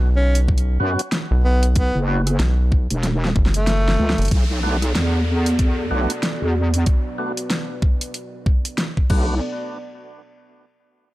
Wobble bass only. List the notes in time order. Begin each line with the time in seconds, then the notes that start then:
0.80 F#2
1.95 F#1
2.91 E1
3.99 C#2
4.31 B1
4.95 E2
5.91 B1
6.42 E2
9.10 B1